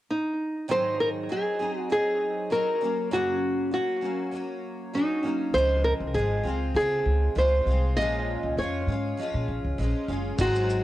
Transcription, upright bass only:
5.54 5.92 C#2 medium
6.00 6.12 C2 medium
6.14 6.39 G#1 medium
6.44 6.69 C#2 medium
6.75 7.00 C#3 medium
7.06 7.30 C#2 medium
7.36 7.61 C#2 medium
7.66 7.96 C2 medium
7.96 8.35 A#1 medium
8.43 8.54 C#2 medium
8.57 8.82 F2 medium
8.87 9.12 G#2 medium
9.34 9.45 A#2 medium
9.48 9.62 A#1 medium
9.65 9.76 C#2 medium
9.78 9.92 A#1 medium
10.08 10.33 F#1 medium
10.39 10.77 G#1 medium

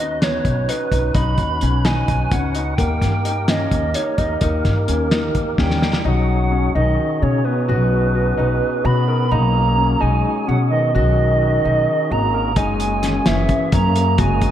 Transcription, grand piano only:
0.00 0.16 D#4 medium
0.22 0.57 B3 medium
0.69 0.86 D#4 medium
0.92 1.09 D#4 medium
1.15 1.50 D#4 medium
1.62 1.79 C#4 medium
1.85 2.20 D#4 medium
2.32 2.50 C#4 medium
2.55 2.73 D#4 medium
2.78 3.13 A#3 medium
3.25 3.42 D#4 medium
3.49 3.84 C#4 medium
3.95 4.13 D#4 medium
4.19 4.36 D#4 medium
4.41 4.77 D#4 medium
4.88 5.05 C#4 medium
5.12 5.47 D#4 medium
5.58 5.76 C#4 medium
5.82 5.99 D#4 medium
6.05 6.40 D#4 medium
6.52 6.69 C#4 medium
6.75 7.10 D#4 medium
7.22 7.39 C#4 medium
7.45 7.62 B3 medium
7.68 8.03 F#4 medium
8.15 8.32 F#4 medium
8.38 8.73 D#4 medium
8.85 9.02 F#4 medium
9.08 9.25 A#4 medium
9.32 9.66 D#4 medium
9.78 9.95 C#4 medium
10.00 10.36 D#4 medium
10.47 10.65 C#4 medium
10.71 10.88 B3 medium
10.95 11.29 F#4 medium
11.42 11.59 F#4 medium
11.65 11.99 D#4 medium
12.11 12.28 F#4 medium
12.34 12.51 A#4 medium
12.57 12.92 D#4 medium
13.03 13.20 C#4 medium
13.26 13.61 C#4 medium
13.73 13.90 C#4 medium
13.96 14.13 A#3 medium
14.18 14.51 F#4 medium

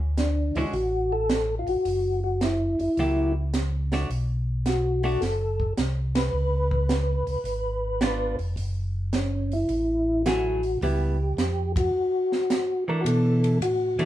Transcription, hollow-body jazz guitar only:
0.57 0.72 D3 medium
0.57 0.73 G#3 medium
0.57 0.73 C#4 medium
0.57 0.73 F#4 medium
2.99 3.33 F#3 soft
2.99 3.33 A#3 soft
2.99 3.33 E4 medium
2.99 3.33 G4 soft
3.93 4.08 A3 soft
3.93 4.09 D4 medium
3.93 4.09 F#4 medium
5.04 5.20 A3 medium
5.04 5.20 D4 medium
5.04 5.21 F#4 medium
8.02 8.36 B3 medium
8.02 8.36 D4 medium
8.02 8.36 F4 medium
10.26 10.60 F#3 medium
10.26 10.60 A3 medium
10.26 10.61 E4 medium
10.26 10.61 G#4 medium
10.83 11.16 G3 soft
10.83 11.16 B3 medium
10.83 11.17 E4 medium
12.88 13.58 E3 medium
12.88 13.58 A3 medium
12.88 13.59 D4 medium
13.99 14.05 E3 medium
13.99 14.05 A3 medium
13.99 14.05 D4 medium

